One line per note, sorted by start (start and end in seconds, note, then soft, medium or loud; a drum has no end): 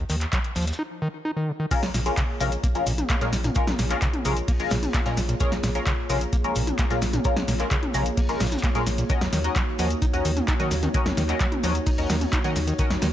0.10 0.26 D#2 loud
0.10 0.16 D#3 loud
0.10 snare loud
0.10 open hi-hat loud
0.10 shaker medium
0.21 snare soft
0.21 clap soft
0.21 closed hi-hat medium
0.33 0.39 F#3 medium
0.33 kick loud
0.33 snare loud
0.33 clap loud
0.33 closed hi-hat medium
0.33 shaker medium
0.44 closed hi-hat soft
0.56 0.72 D#2 medium
0.56 0.65 F3 medium
0.56 snare medium
0.56 open hi-hat medium
0.56 shaker medium
0.62 snare medium
0.62 shaker medium
0.67 snare medium
0.67 closed hi-hat medium
0.67 shaker medium
0.73 snare loud
0.73 shaker medium
0.79 0.83 D#4 medium
1.02 1.08 D#3 loud
1.25 1.31 D#4 medium
1.37 1.50 D#3 medium
1.48 1.52 C#3 medium
1.60 1.66 D#3 medium
1.71 1.75 A#2 medium
1.71 1.82 G#3 medium
1.71 13.13 A#3 medium
1.71 1.82 C#4 medium
1.71 1.82 F4 medium
1.71 9.06 F4 medium
1.71 9.06 G#4 medium
1.71 1.82 A#4 loud
1.71 13.13 C#5 medium
1.71 kick loud
1.71 closed hi-hat medium
1.71 crash loud
1.71 shaker soft
1.71 shaker medium
1.83 1.89 A#1 medium
1.83 snare medium
1.83 shaker soft
1.94 2.10 A#1 loud
1.94 2.01 A#2 loud
1.94 snare medium
1.94 open hi-hat loud
1.94 shaker medium
2.06 2.13 G#3 loud
2.06 2.13 C#4 medium
2.06 2.13 F4 medium
2.06 2.13 A#4 loud
2.06 closed hi-hat medium
2.06 shaker soft
2.17 2.24 C#3 medium
2.17 kick loud
2.17 snare loud
2.17 clap loud
2.17 closed hi-hat medium
2.17 shaker medium
2.17 shaker soft
2.29 snare soft
2.40 2.56 A#1 medium
2.40 2.50 C3 medium
2.40 2.51 G#3 loud
2.40 2.51 C#4 medium
2.40 2.51 F4 medium
2.40 2.51 A#4 loud
2.40 open hi-hat medium
2.40 shaker medium
2.52 closed hi-hat medium
2.52 shaker soft
2.64 2.67 A#3 medium
2.64 kick loud
2.64 closed hi-hat medium
2.64 shaker soft
2.64 shaker medium
2.75 2.83 A#1 loud
2.75 2.86 G#3 medium
2.75 2.86 C#4 medium
2.75 2.86 F4 medium
2.75 2.86 A#4 medium
2.75 closed hi-hat soft
2.75 shaker soft
2.86 3.03 A#1 loud
2.86 2.93 A#2 loud
2.86 open hi-hat loud
2.86 shaker medium
2.98 snare soft
2.98 closed hi-hat medium
2.98 mid tom medium
2.98 shaker soft
3.10 3.16 A#3 medium
3.10 kick loud
3.10 snare loud
3.10 clap loud
3.10 closed hi-hat medium
3.10 shaker medium
3.10 shaker soft
3.21 3.34 A#2 medium
3.21 3.28 G#3 medium
3.21 3.28 C#4 medium
3.21 3.28 F4 medium
3.21 3.28 A#4 medium
3.21 snare soft
3.21 closed hi-hat soft
3.21 shaker soft
3.33 3.49 A#1 medium
3.33 3.37 G#2 medium
3.33 snare medium
3.33 open hi-hat loud
3.33 shaker medium
3.44 3.51 A#2 medium
3.44 closed hi-hat medium
3.44 closed hi-hat soft
3.44 mid tom medium
3.44 shaker soft
3.55 3.60 A#2 medium
3.55 3.67 G#3 medium
3.55 3.67 C#4 medium
3.55 3.67 F4 medium
3.55 3.67 A#4 loud
3.55 kick loud
3.55 closed hi-hat medium
3.55 shaker medium
3.55 shaker soft
3.67 3.74 A#1 medium
3.67 snare medium
3.67 mid tom loud
3.67 shaker soft
3.79 3.95 A#1 loud
3.79 3.85 A#2 loud
3.79 snare medium
3.79 snare soft
3.79 open hi-hat loud
3.79 shaker medium
3.90 3.97 G#3 medium
3.90 3.97 C#4 medium
3.90 3.97 F4 medium
3.90 3.97 A#4 loud
3.90 snare medium
3.90 clap soft
3.90 closed hi-hat medium
3.90 shaker soft
4.02 4.08 C#3 medium
4.02 kick loud
4.02 snare loud
4.02 clap loud
4.02 closed hi-hat medium
4.02 shaker soft
4.02 shaker medium
4.14 closed hi-hat soft
4.14 mid tom medium
4.25 4.41 A#1 medium
4.25 4.35 C3 medium
4.25 4.36 G#3 medium
4.25 4.36 C#4 medium
4.25 4.36 F4 medium
4.25 4.36 A#4 loud
4.25 open hi-hat loud
4.25 shaker medium
4.37 closed hi-hat medium
4.37 shaker soft
4.48 4.52 A#3 medium
4.48 kick loud
4.48 closed hi-hat medium
4.48 open hi-hat medium
4.48 shaker soft
4.60 4.68 A#1 loud
4.60 4.70 G#3 medium
4.60 4.70 C#4 medium
4.60 4.70 F4 medium
4.60 4.70 A#4 medium
4.60 closed hi-hat soft
4.60 shaker soft
4.70 4.87 A#1 loud
4.70 4.78 A#2 loud
4.70 snare medium
4.70 open hi-hat loud
4.70 shaker medium
4.83 closed hi-hat medium
4.83 mid tom medium
4.83 shaker soft
4.94 5.01 A#3 medium
4.94 kick loud
4.94 snare loud
4.94 clap loud
4.94 closed hi-hat medium
4.94 shaker soft
4.94 shaker medium
5.06 5.19 A#2 medium
5.06 5.13 G#3 medium
5.06 5.13 C#4 medium
5.06 5.13 F4 medium
5.06 5.13 A#4 loud
5.06 snare soft
5.06 closed hi-hat soft
5.06 shaker soft
5.17 5.33 A#1 medium
5.17 5.21 G#2 medium
5.17 snare medium
5.17 open hi-hat loud
5.17 shaker medium
5.29 5.35 A#2 medium
5.29 closed hi-hat medium
5.29 shaker soft
5.40 5.44 A#2 medium
5.40 5.51 G#3 medium
5.40 5.51 C#4 medium
5.40 5.51 F4 medium
5.40 5.51 A#4 loud
5.40 kick loud
5.40 closed hi-hat medium
5.40 shaker medium
5.40 shaker soft
5.52 5.58 A#1 medium
5.52 snare medium
5.52 shaker soft
5.63 5.80 A#1 loud
5.63 5.70 A#2 loud
5.63 snare medium
5.63 open hi-hat loud
5.63 shaker medium
5.75 5.82 G#3 medium
5.75 5.82 C#4 medium
5.75 5.82 F4 medium
5.75 5.82 A#4 loud
5.75 closed hi-hat medium
5.75 shaker soft
5.86 5.93 C#3 medium
5.86 kick loud
5.86 snare loud
5.86 clap loud
5.86 closed hi-hat medium
5.86 shaker soft
5.86 shaker medium
5.98 snare soft
6.10 6.26 A#1 medium
6.10 6.19 C3 medium
6.10 6.20 G#3 medium
6.10 6.20 C#4 medium
6.10 6.20 F4 medium
6.10 6.20 A#4 loud
6.10 open hi-hat loud
6.10 shaker medium
6.21 closed hi-hat medium
6.21 shaker soft
6.33 6.37 A#3 medium
6.33 kick loud
6.33 closed hi-hat medium
6.33 shaker soft
6.33 shaker medium
6.44 6.52 A#1 loud
6.44 6.55 G#3 medium
6.44 6.55 C#4 medium
6.44 6.55 F4 medium
6.44 6.55 A#4 medium
6.44 closed hi-hat soft
6.44 shaker soft
6.55 6.72 A#1 loud
6.55 6.62 A#2 loud
6.55 open hi-hat loud
6.55 shaker medium
6.67 snare soft
6.67 closed hi-hat medium
6.67 mid tom medium
6.67 shaker soft
6.78 6.85 A#3 medium
6.78 kick loud
6.78 snare loud
6.78 clap loud
6.78 closed hi-hat medium
6.78 shaker medium
6.78 shaker soft
6.90 7.04 A#2 medium
6.90 6.97 G#3 medium
6.90 6.97 C#4 medium
6.90 6.97 F4 medium
6.90 6.97 A#4 medium
6.90 snare soft
6.90 closed hi-hat soft
6.90 shaker soft
7.02 7.18 A#1 medium
7.02 7.06 G#2 medium
7.02 snare medium
7.02 open hi-hat loud
7.02 shaker medium
7.13 7.20 A#2 medium
7.13 closed hi-hat soft
7.13 mid tom medium
7.13 shaker soft
7.25 7.29 A#2 medium
7.25 7.36 G#3 medium
7.25 7.36 C#4 medium
7.25 7.36 F4 medium
7.25 7.36 A#4 loud
7.25 kick loud
7.25 closed hi-hat medium
7.25 shaker loud
7.25 shaker soft
7.37 7.43 A#1 medium
7.37 snare medium
7.37 mid tom loud
7.37 shaker soft
7.48 7.64 A#1 loud
7.48 7.55 A#2 loud
7.48 snare soft
7.48 snare medium
7.48 open hi-hat loud
7.48 shaker medium
7.59 7.66 G#3 medium
7.59 7.66 C#4 medium
7.59 7.66 F4 medium
7.59 7.66 A#4 loud
7.59 snare soft
7.59 clap soft
7.59 closed hi-hat medium
7.59 shaker soft
7.71 7.78 C#3 medium
7.71 kick loud
7.71 snare loud
7.71 clap loud
7.71 closed hi-hat medium
7.71 shaker soft
7.71 shaker medium
7.83 closed hi-hat soft
7.83 mid tom loud
7.94 8.10 A#1 medium
7.94 8.04 C3 medium
7.94 8.05 G#3 loud
7.94 8.05 C#4 medium
7.94 8.05 F4 medium
7.94 8.05 A#4 loud
7.94 open hi-hat loud
7.94 shaker medium
8.06 closed hi-hat medium
8.06 shaker soft
8.17 8.21 A#3 medium
8.17 kick loud
8.17 closed hi-hat medium
8.17 open hi-hat medium
8.17 shaker soft
8.29 8.37 A#1 loud
8.29 8.40 G#3 medium
8.29 8.40 C#4 medium
8.29 8.40 F4 medium
8.29 8.40 A#4 medium
8.29 closed hi-hat soft
8.29 shaker soft
8.40 8.56 A#1 loud
8.40 8.47 A#2 loud
8.40 snare loud
8.40 snare medium
8.40 open hi-hat loud
8.40 shaker medium
8.46 snare medium
8.46 shaker medium
8.52 snare medium
8.52 closed hi-hat medium
8.52 mid tom medium
8.52 shaker medium
8.52 shaker soft
8.58 snare medium
8.58 shaker medium
8.63 8.70 A#3 medium
8.63 kick loud
8.63 snare loud
8.63 clap loud
8.63 closed hi-hat medium
8.63 shaker soft
8.63 shaker medium
8.75 8.88 A#2 medium
8.75 8.82 G#3 medium
8.75 8.82 C#4 medium
8.75 8.82 F4 medium
8.75 8.82 A#4 loud
8.75 snare soft
8.75 closed hi-hat soft
8.75 shaker soft
8.87 9.03 A#1 medium
8.87 8.90 G#2 medium
8.87 snare medium
8.87 open hi-hat loud
8.87 shaker medium
8.98 9.05 A#2 medium
8.98 closed hi-hat soft
8.98 shaker soft
9.10 9.14 D#3 medium
9.10 9.20 C#4 medium
9.10 13.13 D#4 medium
9.10 9.20 F#4 medium
9.10 13.13 F#4 medium
9.10 9.20 A#4 medium
9.10 9.20 D#5 loud
9.10 kick loud
9.10 closed hi-hat medium
9.10 shaker medium
9.10 shaker soft
9.21 9.28 D#2 medium
9.21 snare medium
9.21 shaker soft
9.33 9.49 D#2 loud
9.33 9.39 D#3 loud
9.33 snare medium
9.33 open hi-hat loud
9.33 shaker medium
9.44 9.51 C#4 medium
9.44 9.51 F#4 medium
9.44 9.51 A#4 medium
9.44 9.51 D#5 loud
9.44 closed hi-hat medium
9.44 shaker soft
9.56 9.62 F#3 medium
9.56 kick loud
9.56 snare loud
9.56 clap loud
9.56 closed hi-hat medium
9.56 shaker soft
9.56 shaker medium
9.67 snare soft
9.79 9.95 D#2 medium
9.79 9.88 F3 medium
9.79 9.90 C#4 medium
9.79 9.90 F#4 medium
9.79 9.90 A#4 medium
9.79 9.90 D#5 loud
9.79 open hi-hat loud
9.79 shaker medium
9.90 closed hi-hat medium
9.90 shaker soft
10.02 10.06 D#4 medium
10.02 kick loud
10.02 closed hi-hat medium
10.02 shaker soft
10.02 shaker medium
10.13 10.22 D#2 loud
10.13 10.24 C#4 medium
10.13 10.24 F#4 medium
10.13 10.24 A#4 medium
10.13 10.24 D#5 medium
10.13 closed hi-hat soft
10.13 shaker soft
10.25 10.41 D#2 loud
10.25 10.31 D#3 loud
10.25 open hi-hat loud
10.25 shaker medium
10.37 snare soft
10.37 closed hi-hat medium
10.37 mid tom medium
10.37 shaker soft
10.48 10.55 D#4 medium
10.48 kick loud
10.48 snare loud
10.48 clap loud
10.48 closed hi-hat medium
10.48 shaker soft
10.48 shaker medium
10.60 10.73 D#3 medium
10.60 10.66 C#4 medium
10.60 10.66 F#4 medium
10.60 10.66 A#4 medium
10.60 10.66 D#5 loud
10.60 snare soft
10.60 closed hi-hat soft
10.60 shaker soft
10.71 10.87 D#2 medium
10.71 10.75 C#3 medium
10.71 snare medium
10.71 open hi-hat medium
10.71 shaker medium
10.83 10.89 D#3 medium
10.83 closed hi-hat soft
10.83 mid tom medium
10.83 shaker soft
10.94 10.98 D#3 medium
10.94 11.05 C#4 medium
10.94 11.05 F#4 medium
10.94 11.05 A#4 medium
10.94 11.05 D#5 loud
10.94 kick loud
10.94 closed hi-hat medium
10.94 shaker soft
10.94 shaker medium
11.06 11.12 D#2 medium
11.06 snare medium
11.06 mid tom medium
11.06 shaker soft
11.17 11.33 D#2 loud
11.17 11.24 D#3 loud
11.17 snare medium
11.17 snare soft
11.17 open hi-hat loud
11.17 shaker medium
11.29 11.36 C#4 loud
11.29 11.36 F#4 medium
11.29 11.36 A#4 medium
11.29 11.36 D#5 loud
11.29 snare soft
11.29 clap soft
11.29 closed hi-hat medium
11.29 shaker soft
11.40 11.47 F#3 medium
11.40 kick loud
11.40 snare loud
11.40 clap loud
11.40 closed hi-hat medium
11.40 shaker medium
11.40 shaker soft
11.52 closed hi-hat soft
11.52 mid tom medium
11.63 11.80 D#2 medium
11.63 11.73 F3 medium
11.63 11.74 C#4 medium
11.63 11.74 F#4 medium
11.63 11.74 A#4 medium
11.63 11.74 D#5 loud
11.63 open hi-hat medium
11.63 shaker medium
11.75 closed hi-hat medium
11.75 shaker soft
11.86 11.90 D#4 medium
11.86 kick loud
11.86 closed hi-hat medium
11.86 open hi-hat medium
11.86 shaker soft
11.98 12.06 D#2 loud
11.98 12.09 C#4 medium
11.98 12.09 F#4 medium
11.98 12.09 A#4 medium
11.98 12.09 D#5 medium
11.98 closed hi-hat soft
11.98 shaker soft
12.10 12.26 D#2 loud
12.10 12.16 D#3 loud
12.10 snare medium
12.10 open hi-hat loud
12.10 shaker medium
12.21 closed hi-hat medium
12.21 mid tom medium
12.21 shaker soft
12.33 12.39 D#4 medium
12.33 kick loud
12.33 snare loud
12.33 clap loud
12.33 closed hi-hat medium
12.33 shaker soft
12.33 shaker medium
12.44 12.57 D#3 medium
12.44 12.51 C#4 medium
12.44 12.51 F#4 medium
12.44 12.51 A#4 medium
12.44 12.51 D#5 loud
12.44 snare soft
12.44 closed hi-hat soft
12.44 shaker soft
12.56 12.72 D#2 medium
12.56 12.60 C#3 medium
12.56 snare medium
12.56 open hi-hat medium
12.56 shaker medium
12.67 12.74 D#3 medium
12.67 closed hi-hat medium
12.67 shaker soft
12.79 12.83 D#3 medium
12.79 12.90 C#4 medium
12.79 12.90 F#4 medium
12.79 12.90 A#4 medium
12.79 12.90 D#5 loud
12.79 kick loud
12.79 closed hi-hat medium
12.79 shaker medium
12.79 shaker soft
12.90 12.97 D#2 medium
12.90 snare medium
12.90 shaker soft
13.02 13.13 D#2 loud
13.02 13.08 D#3 loud
13.02 snare medium
13.02 open hi-hat loud
13.02 shaker medium